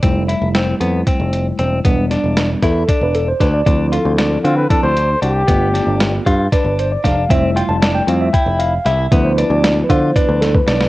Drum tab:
HH |x-x-x-x-x-x-x-|x-x-x-x-x-x-x-|x-x-x-x-x-x-x-|x-x-x-x-x-x-x-|
SD |----o---------|--o-o-o-----o-|----o---------|--o-o---o---o-|
BD |o-------o-----|o-----o-o---o-|o-------o-----|o-----o-o---o-|

HH |x-x-x-x-x-x-x-|x-x-x-x-x-x-x-|
SD |----o-------o-|----o-----o-oo|
BD |o-------o-----|o-----o-o--o--|